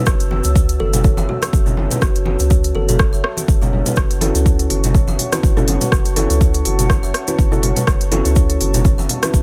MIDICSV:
0, 0, Header, 1, 7, 480
1, 0, Start_track
1, 0, Key_signature, 3, "minor"
1, 0, Tempo, 487805
1, 66, Time_signature, 4, 2, 24, 8
1, 9275, End_track
2, 0, Start_track
2, 0, Title_t, "Analog synth pad"
2, 0, Program_c, 0, 89
2, 0, Note_on_c, 0, 66, 84
2, 0, Note_on_c, 0, 73, 75
2, 0, Note_on_c, 0, 81, 76
2, 0, Note_on_c, 0, 88, 91
2, 3894, Note_off_c, 0, 88, 0
2, 3906, Note_on_c, 0, 85, 85
2, 9275, Note_off_c, 0, 66, 0
2, 9275, Note_off_c, 0, 73, 0
2, 9275, Note_off_c, 0, 81, 0
2, 9275, Note_off_c, 0, 85, 0
2, 9275, End_track
3, 0, Start_track
3, 0, Title_t, "Kalimba"
3, 0, Program_c, 1, 108
3, 788, Note_on_c, 1, 69, 96
3, 1269, Note_on_c, 1, 66, 94
3, 1464, Note_off_c, 1, 69, 0
3, 1465, Note_off_c, 1, 66, 0
3, 2709, Note_on_c, 1, 69, 90
3, 2793, Note_off_c, 1, 69, 0
3, 2843, Note_on_c, 1, 69, 75
3, 2910, Note_off_c, 1, 69, 0
3, 9275, End_track
4, 0, Start_track
4, 0, Title_t, "Kalimba"
4, 0, Program_c, 2, 108
4, 61, Note_on_c, 2, 66, 78
4, 184, Note_off_c, 2, 66, 0
4, 303, Note_on_c, 2, 66, 75
4, 425, Note_off_c, 2, 66, 0
4, 546, Note_on_c, 2, 73, 78
4, 666, Note_off_c, 2, 73, 0
4, 784, Note_on_c, 2, 66, 71
4, 905, Note_off_c, 2, 66, 0
4, 1026, Note_on_c, 2, 73, 76
4, 1146, Note_off_c, 2, 73, 0
4, 1160, Note_on_c, 2, 76, 79
4, 1217, Note_off_c, 2, 76, 0
4, 1395, Note_on_c, 2, 66, 74
4, 1455, Note_off_c, 2, 66, 0
4, 1634, Note_on_c, 2, 61, 74
4, 1732, Note_off_c, 2, 61, 0
4, 1875, Note_on_c, 2, 71, 70
4, 1973, Note_off_c, 2, 71, 0
4, 1981, Note_on_c, 2, 66, 74
4, 2103, Note_off_c, 2, 66, 0
4, 2224, Note_on_c, 2, 66, 70
4, 2345, Note_off_c, 2, 66, 0
4, 2462, Note_on_c, 2, 73, 83
4, 2584, Note_off_c, 2, 73, 0
4, 2703, Note_on_c, 2, 66, 70
4, 2824, Note_off_c, 2, 66, 0
4, 2942, Note_on_c, 2, 73, 81
4, 3064, Note_off_c, 2, 73, 0
4, 3077, Note_on_c, 2, 76, 79
4, 3136, Note_off_c, 2, 76, 0
4, 3316, Note_on_c, 2, 66, 75
4, 3375, Note_off_c, 2, 66, 0
4, 3558, Note_on_c, 2, 61, 71
4, 3654, Note_off_c, 2, 61, 0
4, 3799, Note_on_c, 2, 71, 69
4, 3895, Note_off_c, 2, 71, 0
4, 3906, Note_on_c, 2, 66, 74
4, 4026, Note_off_c, 2, 66, 0
4, 4149, Note_on_c, 2, 66, 71
4, 4267, Note_off_c, 2, 66, 0
4, 4389, Note_on_c, 2, 73, 84
4, 4507, Note_off_c, 2, 73, 0
4, 4627, Note_on_c, 2, 66, 73
4, 4746, Note_off_c, 2, 66, 0
4, 4867, Note_on_c, 2, 73, 73
4, 4986, Note_off_c, 2, 73, 0
4, 5004, Note_on_c, 2, 76, 74
4, 5059, Note_off_c, 2, 76, 0
4, 5240, Note_on_c, 2, 66, 73
4, 5297, Note_off_c, 2, 66, 0
4, 5479, Note_on_c, 2, 61, 75
4, 5575, Note_off_c, 2, 61, 0
4, 5718, Note_on_c, 2, 71, 75
4, 5814, Note_off_c, 2, 71, 0
4, 5826, Note_on_c, 2, 66, 77
4, 5946, Note_off_c, 2, 66, 0
4, 6066, Note_on_c, 2, 66, 73
4, 6186, Note_off_c, 2, 66, 0
4, 6304, Note_on_c, 2, 73, 85
4, 6425, Note_off_c, 2, 73, 0
4, 6546, Note_on_c, 2, 66, 72
4, 6666, Note_off_c, 2, 66, 0
4, 6786, Note_on_c, 2, 73, 75
4, 6906, Note_off_c, 2, 73, 0
4, 6919, Note_on_c, 2, 76, 80
4, 6976, Note_off_c, 2, 76, 0
4, 7156, Note_on_c, 2, 66, 75
4, 7215, Note_off_c, 2, 66, 0
4, 7399, Note_on_c, 2, 61, 74
4, 7495, Note_off_c, 2, 61, 0
4, 7638, Note_on_c, 2, 71, 75
4, 7735, Note_off_c, 2, 71, 0
4, 7747, Note_on_c, 2, 66, 82
4, 7866, Note_off_c, 2, 66, 0
4, 7985, Note_on_c, 2, 66, 73
4, 8105, Note_off_c, 2, 66, 0
4, 8228, Note_on_c, 2, 73, 82
4, 8347, Note_off_c, 2, 73, 0
4, 8465, Note_on_c, 2, 66, 70
4, 8585, Note_off_c, 2, 66, 0
4, 8704, Note_on_c, 2, 73, 78
4, 8825, Note_off_c, 2, 73, 0
4, 8838, Note_on_c, 2, 76, 76
4, 8896, Note_off_c, 2, 76, 0
4, 9077, Note_on_c, 2, 66, 78
4, 9136, Note_off_c, 2, 66, 0
4, 9275, End_track
5, 0, Start_track
5, 0, Title_t, "Felt piano"
5, 0, Program_c, 3, 0
5, 4146, Note_on_c, 3, 69, 98
5, 4147, Note_on_c, 3, 61, 87
5, 4147, Note_on_c, 3, 64, 74
5, 4147, Note_on_c, 3, 66, 77
5, 5207, Note_off_c, 3, 69, 0
5, 5208, Note_off_c, 3, 61, 0
5, 5208, Note_off_c, 3, 64, 0
5, 5208, Note_off_c, 3, 66, 0
5, 5240, Note_on_c, 3, 61, 67
5, 5240, Note_on_c, 3, 64, 60
5, 5240, Note_on_c, 3, 66, 61
5, 5240, Note_on_c, 3, 71, 74
5, 5400, Note_off_c, 3, 61, 0
5, 5400, Note_off_c, 3, 64, 0
5, 5400, Note_off_c, 3, 66, 0
5, 5400, Note_off_c, 3, 71, 0
5, 5478, Note_on_c, 3, 66, 87
5, 5478, Note_on_c, 3, 69, 107
5, 5479, Note_on_c, 3, 61, 91
5, 5479, Note_on_c, 3, 64, 90
5, 5572, Note_off_c, 3, 66, 0
5, 5572, Note_off_c, 3, 69, 0
5, 5573, Note_off_c, 3, 61, 0
5, 5573, Note_off_c, 3, 64, 0
5, 6066, Note_on_c, 3, 69, 99
5, 6067, Note_on_c, 3, 61, 84
5, 6067, Note_on_c, 3, 64, 82
5, 6067, Note_on_c, 3, 66, 75
5, 7127, Note_off_c, 3, 69, 0
5, 7128, Note_off_c, 3, 61, 0
5, 7128, Note_off_c, 3, 64, 0
5, 7128, Note_off_c, 3, 66, 0
5, 7159, Note_on_c, 3, 61, 70
5, 7160, Note_on_c, 3, 64, 68
5, 7160, Note_on_c, 3, 66, 63
5, 7160, Note_on_c, 3, 71, 77
5, 7319, Note_off_c, 3, 61, 0
5, 7320, Note_off_c, 3, 64, 0
5, 7320, Note_off_c, 3, 66, 0
5, 7320, Note_off_c, 3, 71, 0
5, 7399, Note_on_c, 3, 64, 85
5, 7399, Note_on_c, 3, 66, 84
5, 7399, Note_on_c, 3, 69, 100
5, 7400, Note_on_c, 3, 61, 93
5, 7493, Note_off_c, 3, 61, 0
5, 7493, Note_off_c, 3, 64, 0
5, 7493, Note_off_c, 3, 66, 0
5, 7493, Note_off_c, 3, 69, 0
5, 7986, Note_on_c, 3, 64, 81
5, 7986, Note_on_c, 3, 66, 79
5, 7987, Note_on_c, 3, 61, 83
5, 7987, Note_on_c, 3, 69, 95
5, 9047, Note_off_c, 3, 64, 0
5, 9047, Note_off_c, 3, 66, 0
5, 9047, Note_off_c, 3, 69, 0
5, 9048, Note_off_c, 3, 61, 0
5, 9080, Note_on_c, 3, 61, 68
5, 9080, Note_on_c, 3, 64, 65
5, 9080, Note_on_c, 3, 66, 62
5, 9080, Note_on_c, 3, 71, 80
5, 9240, Note_off_c, 3, 61, 0
5, 9240, Note_off_c, 3, 64, 0
5, 9240, Note_off_c, 3, 66, 0
5, 9240, Note_off_c, 3, 71, 0
5, 9275, End_track
6, 0, Start_track
6, 0, Title_t, "Sub bass"
6, 0, Program_c, 4, 38
6, 67, Note_on_c, 4, 30, 95
6, 406, Note_off_c, 4, 30, 0
6, 438, Note_on_c, 4, 37, 89
6, 758, Note_off_c, 4, 37, 0
6, 787, Note_on_c, 4, 30, 99
6, 1126, Note_off_c, 4, 30, 0
6, 1160, Note_on_c, 4, 30, 83
6, 1249, Note_off_c, 4, 30, 0
6, 1507, Note_on_c, 4, 30, 104
6, 1846, Note_off_c, 4, 30, 0
6, 1987, Note_on_c, 4, 30, 102
6, 2326, Note_off_c, 4, 30, 0
6, 2361, Note_on_c, 4, 37, 87
6, 2680, Note_off_c, 4, 37, 0
6, 2704, Note_on_c, 4, 30, 91
6, 3044, Note_off_c, 4, 30, 0
6, 3078, Note_on_c, 4, 30, 87
6, 3168, Note_off_c, 4, 30, 0
6, 3426, Note_on_c, 4, 30, 100
6, 3765, Note_off_c, 4, 30, 0
6, 3906, Note_on_c, 4, 30, 100
6, 4245, Note_off_c, 4, 30, 0
6, 4279, Note_on_c, 4, 37, 86
6, 4599, Note_off_c, 4, 37, 0
6, 4627, Note_on_c, 4, 30, 94
6, 4966, Note_off_c, 4, 30, 0
6, 5000, Note_on_c, 4, 30, 82
6, 5089, Note_off_c, 4, 30, 0
6, 5346, Note_on_c, 4, 30, 102
6, 5685, Note_off_c, 4, 30, 0
6, 5826, Note_on_c, 4, 30, 95
6, 6165, Note_off_c, 4, 30, 0
6, 6200, Note_on_c, 4, 37, 85
6, 6519, Note_off_c, 4, 37, 0
6, 6548, Note_on_c, 4, 30, 94
6, 6886, Note_off_c, 4, 30, 0
6, 6921, Note_on_c, 4, 30, 81
6, 7010, Note_off_c, 4, 30, 0
6, 7267, Note_on_c, 4, 30, 100
6, 7606, Note_off_c, 4, 30, 0
6, 7747, Note_on_c, 4, 30, 99
6, 8086, Note_off_c, 4, 30, 0
6, 8122, Note_on_c, 4, 37, 86
6, 8440, Note_off_c, 4, 37, 0
6, 8468, Note_on_c, 4, 30, 99
6, 8806, Note_off_c, 4, 30, 0
6, 8842, Note_on_c, 4, 30, 86
6, 8930, Note_off_c, 4, 30, 0
6, 9186, Note_on_c, 4, 30, 103
6, 9275, Note_off_c, 4, 30, 0
6, 9275, End_track
7, 0, Start_track
7, 0, Title_t, "Drums"
7, 60, Note_on_c, 9, 82, 69
7, 66, Note_on_c, 9, 36, 123
7, 66, Note_on_c, 9, 37, 93
7, 158, Note_off_c, 9, 82, 0
7, 164, Note_off_c, 9, 37, 0
7, 165, Note_off_c, 9, 36, 0
7, 196, Note_on_c, 9, 82, 41
7, 199, Note_on_c, 9, 42, 39
7, 294, Note_off_c, 9, 82, 0
7, 298, Note_off_c, 9, 42, 0
7, 305, Note_on_c, 9, 63, 100
7, 404, Note_off_c, 9, 63, 0
7, 430, Note_on_c, 9, 82, 72
7, 440, Note_on_c, 9, 42, 54
7, 528, Note_off_c, 9, 82, 0
7, 539, Note_off_c, 9, 42, 0
7, 547, Note_on_c, 9, 36, 124
7, 550, Note_on_c, 9, 82, 68
7, 645, Note_off_c, 9, 36, 0
7, 649, Note_off_c, 9, 82, 0
7, 679, Note_on_c, 9, 82, 43
7, 680, Note_on_c, 9, 42, 42
7, 778, Note_off_c, 9, 42, 0
7, 778, Note_off_c, 9, 82, 0
7, 786, Note_on_c, 9, 63, 67
7, 884, Note_off_c, 9, 63, 0
7, 919, Note_on_c, 9, 64, 97
7, 920, Note_on_c, 9, 42, 51
7, 920, Note_on_c, 9, 82, 78
7, 1017, Note_off_c, 9, 64, 0
7, 1018, Note_off_c, 9, 42, 0
7, 1018, Note_off_c, 9, 82, 0
7, 1024, Note_on_c, 9, 82, 63
7, 1027, Note_on_c, 9, 36, 117
7, 1122, Note_off_c, 9, 82, 0
7, 1125, Note_off_c, 9, 36, 0
7, 1153, Note_on_c, 9, 63, 100
7, 1158, Note_on_c, 9, 82, 45
7, 1251, Note_off_c, 9, 63, 0
7, 1256, Note_off_c, 9, 82, 0
7, 1270, Note_on_c, 9, 64, 74
7, 1369, Note_off_c, 9, 64, 0
7, 1398, Note_on_c, 9, 63, 61
7, 1401, Note_on_c, 9, 82, 73
7, 1402, Note_on_c, 9, 37, 92
7, 1402, Note_on_c, 9, 42, 52
7, 1496, Note_off_c, 9, 63, 0
7, 1500, Note_off_c, 9, 82, 0
7, 1501, Note_off_c, 9, 37, 0
7, 1501, Note_off_c, 9, 42, 0
7, 1507, Note_on_c, 9, 36, 127
7, 1510, Note_on_c, 9, 82, 66
7, 1605, Note_off_c, 9, 36, 0
7, 1608, Note_off_c, 9, 82, 0
7, 1639, Note_on_c, 9, 64, 99
7, 1639, Note_on_c, 9, 82, 40
7, 1737, Note_off_c, 9, 64, 0
7, 1737, Note_off_c, 9, 82, 0
7, 1743, Note_on_c, 9, 63, 99
7, 1841, Note_off_c, 9, 63, 0
7, 1882, Note_on_c, 9, 42, 52
7, 1882, Note_on_c, 9, 82, 79
7, 1883, Note_on_c, 9, 64, 100
7, 1980, Note_off_c, 9, 82, 0
7, 1981, Note_off_c, 9, 42, 0
7, 1981, Note_off_c, 9, 64, 0
7, 1985, Note_on_c, 9, 82, 62
7, 1986, Note_on_c, 9, 36, 124
7, 1987, Note_on_c, 9, 37, 94
7, 2084, Note_off_c, 9, 82, 0
7, 2085, Note_off_c, 9, 36, 0
7, 2085, Note_off_c, 9, 37, 0
7, 2116, Note_on_c, 9, 82, 43
7, 2123, Note_on_c, 9, 42, 41
7, 2215, Note_off_c, 9, 82, 0
7, 2219, Note_on_c, 9, 63, 99
7, 2221, Note_off_c, 9, 42, 0
7, 2317, Note_off_c, 9, 63, 0
7, 2354, Note_on_c, 9, 82, 71
7, 2361, Note_on_c, 9, 42, 52
7, 2452, Note_off_c, 9, 82, 0
7, 2460, Note_off_c, 9, 42, 0
7, 2464, Note_on_c, 9, 82, 66
7, 2467, Note_on_c, 9, 36, 119
7, 2563, Note_off_c, 9, 82, 0
7, 2565, Note_off_c, 9, 36, 0
7, 2596, Note_on_c, 9, 82, 44
7, 2601, Note_on_c, 9, 42, 43
7, 2694, Note_off_c, 9, 82, 0
7, 2700, Note_off_c, 9, 42, 0
7, 2710, Note_on_c, 9, 63, 64
7, 2809, Note_off_c, 9, 63, 0
7, 2841, Note_on_c, 9, 42, 51
7, 2842, Note_on_c, 9, 82, 81
7, 2844, Note_on_c, 9, 64, 94
7, 2939, Note_off_c, 9, 42, 0
7, 2940, Note_off_c, 9, 82, 0
7, 2942, Note_off_c, 9, 64, 0
7, 2945, Note_on_c, 9, 82, 58
7, 2946, Note_on_c, 9, 37, 85
7, 2947, Note_on_c, 9, 36, 120
7, 3043, Note_off_c, 9, 82, 0
7, 3045, Note_off_c, 9, 37, 0
7, 3046, Note_off_c, 9, 36, 0
7, 3085, Note_on_c, 9, 82, 41
7, 3183, Note_off_c, 9, 82, 0
7, 3187, Note_on_c, 9, 37, 82
7, 3286, Note_off_c, 9, 37, 0
7, 3315, Note_on_c, 9, 63, 66
7, 3322, Note_on_c, 9, 42, 49
7, 3325, Note_on_c, 9, 82, 76
7, 3413, Note_off_c, 9, 63, 0
7, 3420, Note_off_c, 9, 42, 0
7, 3424, Note_off_c, 9, 82, 0
7, 3427, Note_on_c, 9, 36, 117
7, 3430, Note_on_c, 9, 82, 62
7, 3525, Note_off_c, 9, 36, 0
7, 3529, Note_off_c, 9, 82, 0
7, 3562, Note_on_c, 9, 82, 37
7, 3565, Note_on_c, 9, 64, 102
7, 3660, Note_off_c, 9, 82, 0
7, 3664, Note_off_c, 9, 64, 0
7, 3669, Note_on_c, 9, 64, 94
7, 3768, Note_off_c, 9, 64, 0
7, 3798, Note_on_c, 9, 64, 89
7, 3798, Note_on_c, 9, 82, 73
7, 3800, Note_on_c, 9, 42, 48
7, 3896, Note_off_c, 9, 64, 0
7, 3897, Note_off_c, 9, 82, 0
7, 3897, Note_on_c, 9, 82, 61
7, 3899, Note_off_c, 9, 42, 0
7, 3906, Note_on_c, 9, 36, 112
7, 3909, Note_on_c, 9, 37, 92
7, 3995, Note_off_c, 9, 82, 0
7, 4005, Note_off_c, 9, 36, 0
7, 4007, Note_off_c, 9, 37, 0
7, 4041, Note_on_c, 9, 42, 40
7, 4042, Note_on_c, 9, 82, 39
7, 4139, Note_off_c, 9, 42, 0
7, 4141, Note_off_c, 9, 82, 0
7, 4141, Note_on_c, 9, 63, 101
7, 4146, Note_on_c, 9, 46, 85
7, 4240, Note_off_c, 9, 63, 0
7, 4245, Note_off_c, 9, 46, 0
7, 4280, Note_on_c, 9, 42, 52
7, 4283, Note_on_c, 9, 82, 70
7, 4379, Note_off_c, 9, 42, 0
7, 4382, Note_off_c, 9, 82, 0
7, 4386, Note_on_c, 9, 36, 112
7, 4390, Note_on_c, 9, 82, 67
7, 4485, Note_off_c, 9, 36, 0
7, 4488, Note_off_c, 9, 82, 0
7, 4520, Note_on_c, 9, 42, 44
7, 4524, Note_on_c, 9, 82, 37
7, 4618, Note_off_c, 9, 42, 0
7, 4622, Note_off_c, 9, 82, 0
7, 4626, Note_on_c, 9, 46, 79
7, 4626, Note_on_c, 9, 63, 62
7, 4724, Note_off_c, 9, 63, 0
7, 4725, Note_off_c, 9, 46, 0
7, 4760, Note_on_c, 9, 42, 52
7, 4761, Note_on_c, 9, 82, 66
7, 4767, Note_on_c, 9, 64, 92
7, 4858, Note_off_c, 9, 42, 0
7, 4859, Note_off_c, 9, 82, 0
7, 4865, Note_off_c, 9, 64, 0
7, 4866, Note_on_c, 9, 36, 112
7, 4868, Note_on_c, 9, 82, 59
7, 4965, Note_off_c, 9, 36, 0
7, 4966, Note_off_c, 9, 82, 0
7, 4994, Note_on_c, 9, 82, 40
7, 4995, Note_on_c, 9, 63, 84
7, 5092, Note_off_c, 9, 82, 0
7, 5094, Note_off_c, 9, 63, 0
7, 5098, Note_on_c, 9, 64, 65
7, 5107, Note_on_c, 9, 46, 77
7, 5196, Note_off_c, 9, 64, 0
7, 5206, Note_off_c, 9, 46, 0
7, 5238, Note_on_c, 9, 63, 64
7, 5238, Note_on_c, 9, 82, 79
7, 5240, Note_on_c, 9, 37, 82
7, 5240, Note_on_c, 9, 42, 50
7, 5336, Note_off_c, 9, 63, 0
7, 5337, Note_off_c, 9, 82, 0
7, 5338, Note_off_c, 9, 37, 0
7, 5338, Note_off_c, 9, 42, 0
7, 5347, Note_on_c, 9, 36, 116
7, 5352, Note_on_c, 9, 82, 66
7, 5445, Note_off_c, 9, 36, 0
7, 5450, Note_off_c, 9, 82, 0
7, 5481, Note_on_c, 9, 64, 102
7, 5484, Note_on_c, 9, 82, 38
7, 5579, Note_off_c, 9, 64, 0
7, 5582, Note_off_c, 9, 82, 0
7, 5586, Note_on_c, 9, 46, 78
7, 5594, Note_on_c, 9, 63, 92
7, 5684, Note_off_c, 9, 46, 0
7, 5693, Note_off_c, 9, 63, 0
7, 5719, Note_on_c, 9, 64, 82
7, 5720, Note_on_c, 9, 42, 51
7, 5720, Note_on_c, 9, 82, 79
7, 5817, Note_off_c, 9, 64, 0
7, 5818, Note_off_c, 9, 82, 0
7, 5819, Note_off_c, 9, 42, 0
7, 5825, Note_on_c, 9, 37, 87
7, 5826, Note_on_c, 9, 36, 113
7, 5830, Note_on_c, 9, 82, 58
7, 5923, Note_off_c, 9, 37, 0
7, 5925, Note_off_c, 9, 36, 0
7, 5929, Note_off_c, 9, 82, 0
7, 5956, Note_on_c, 9, 82, 36
7, 5958, Note_on_c, 9, 42, 43
7, 6054, Note_off_c, 9, 82, 0
7, 6056, Note_off_c, 9, 42, 0
7, 6064, Note_on_c, 9, 46, 86
7, 6072, Note_on_c, 9, 63, 92
7, 6163, Note_off_c, 9, 46, 0
7, 6171, Note_off_c, 9, 63, 0
7, 6200, Note_on_c, 9, 42, 52
7, 6208, Note_on_c, 9, 82, 73
7, 6298, Note_off_c, 9, 42, 0
7, 6306, Note_off_c, 9, 82, 0
7, 6307, Note_on_c, 9, 36, 107
7, 6309, Note_on_c, 9, 82, 66
7, 6405, Note_off_c, 9, 36, 0
7, 6408, Note_off_c, 9, 82, 0
7, 6433, Note_on_c, 9, 82, 38
7, 6440, Note_on_c, 9, 42, 45
7, 6531, Note_off_c, 9, 82, 0
7, 6538, Note_off_c, 9, 42, 0
7, 6546, Note_on_c, 9, 46, 72
7, 6560, Note_on_c, 9, 63, 54
7, 6644, Note_off_c, 9, 46, 0
7, 6658, Note_off_c, 9, 63, 0
7, 6679, Note_on_c, 9, 64, 84
7, 6680, Note_on_c, 9, 42, 54
7, 6687, Note_on_c, 9, 82, 78
7, 6778, Note_off_c, 9, 42, 0
7, 6778, Note_off_c, 9, 64, 0
7, 6786, Note_off_c, 9, 82, 0
7, 6786, Note_on_c, 9, 37, 76
7, 6787, Note_on_c, 9, 36, 112
7, 6791, Note_on_c, 9, 82, 65
7, 6885, Note_off_c, 9, 36, 0
7, 6885, Note_off_c, 9, 37, 0
7, 6890, Note_off_c, 9, 82, 0
7, 6922, Note_on_c, 9, 82, 42
7, 7020, Note_off_c, 9, 82, 0
7, 7028, Note_on_c, 9, 37, 79
7, 7028, Note_on_c, 9, 46, 80
7, 7127, Note_off_c, 9, 37, 0
7, 7127, Note_off_c, 9, 46, 0
7, 7160, Note_on_c, 9, 82, 72
7, 7161, Note_on_c, 9, 42, 52
7, 7161, Note_on_c, 9, 63, 58
7, 7259, Note_off_c, 9, 42, 0
7, 7259, Note_off_c, 9, 82, 0
7, 7260, Note_off_c, 9, 63, 0
7, 7267, Note_on_c, 9, 36, 112
7, 7272, Note_on_c, 9, 82, 64
7, 7366, Note_off_c, 9, 36, 0
7, 7370, Note_off_c, 9, 82, 0
7, 7393, Note_on_c, 9, 64, 85
7, 7406, Note_on_c, 9, 82, 38
7, 7492, Note_off_c, 9, 64, 0
7, 7505, Note_off_c, 9, 82, 0
7, 7509, Note_on_c, 9, 46, 77
7, 7512, Note_on_c, 9, 64, 84
7, 7607, Note_off_c, 9, 46, 0
7, 7610, Note_off_c, 9, 64, 0
7, 7635, Note_on_c, 9, 64, 89
7, 7641, Note_on_c, 9, 42, 55
7, 7649, Note_on_c, 9, 82, 79
7, 7734, Note_off_c, 9, 64, 0
7, 7739, Note_off_c, 9, 42, 0
7, 7747, Note_off_c, 9, 82, 0
7, 7747, Note_on_c, 9, 37, 91
7, 7748, Note_on_c, 9, 36, 107
7, 7752, Note_on_c, 9, 82, 54
7, 7845, Note_off_c, 9, 37, 0
7, 7846, Note_off_c, 9, 36, 0
7, 7850, Note_off_c, 9, 82, 0
7, 7879, Note_on_c, 9, 82, 35
7, 7881, Note_on_c, 9, 42, 46
7, 7978, Note_off_c, 9, 82, 0
7, 7979, Note_off_c, 9, 42, 0
7, 7987, Note_on_c, 9, 46, 85
7, 7991, Note_on_c, 9, 63, 107
7, 8085, Note_off_c, 9, 46, 0
7, 8090, Note_off_c, 9, 63, 0
7, 8120, Note_on_c, 9, 42, 53
7, 8122, Note_on_c, 9, 82, 63
7, 8219, Note_off_c, 9, 42, 0
7, 8220, Note_off_c, 9, 82, 0
7, 8223, Note_on_c, 9, 82, 66
7, 8228, Note_on_c, 9, 36, 114
7, 8321, Note_off_c, 9, 82, 0
7, 8327, Note_off_c, 9, 36, 0
7, 8360, Note_on_c, 9, 82, 42
7, 8361, Note_on_c, 9, 42, 47
7, 8459, Note_off_c, 9, 42, 0
7, 8459, Note_off_c, 9, 82, 0
7, 8469, Note_on_c, 9, 46, 73
7, 8474, Note_on_c, 9, 63, 54
7, 8567, Note_off_c, 9, 46, 0
7, 8572, Note_off_c, 9, 63, 0
7, 8600, Note_on_c, 9, 82, 77
7, 8602, Note_on_c, 9, 42, 54
7, 8603, Note_on_c, 9, 64, 95
7, 8698, Note_off_c, 9, 82, 0
7, 8700, Note_off_c, 9, 42, 0
7, 8702, Note_off_c, 9, 64, 0
7, 8708, Note_on_c, 9, 36, 115
7, 8709, Note_on_c, 9, 82, 62
7, 8806, Note_off_c, 9, 36, 0
7, 8808, Note_off_c, 9, 82, 0
7, 8845, Note_on_c, 9, 63, 83
7, 8846, Note_on_c, 9, 82, 41
7, 8943, Note_off_c, 9, 63, 0
7, 8944, Note_off_c, 9, 82, 0
7, 8947, Note_on_c, 9, 64, 77
7, 8948, Note_on_c, 9, 46, 87
7, 9045, Note_off_c, 9, 64, 0
7, 9046, Note_off_c, 9, 46, 0
7, 9080, Note_on_c, 9, 37, 84
7, 9080, Note_on_c, 9, 42, 54
7, 9082, Note_on_c, 9, 82, 68
7, 9087, Note_on_c, 9, 63, 61
7, 9178, Note_off_c, 9, 37, 0
7, 9178, Note_off_c, 9, 42, 0
7, 9180, Note_off_c, 9, 82, 0
7, 9186, Note_off_c, 9, 63, 0
7, 9187, Note_on_c, 9, 36, 109
7, 9190, Note_on_c, 9, 82, 70
7, 9275, Note_off_c, 9, 36, 0
7, 9275, Note_off_c, 9, 82, 0
7, 9275, End_track
0, 0, End_of_file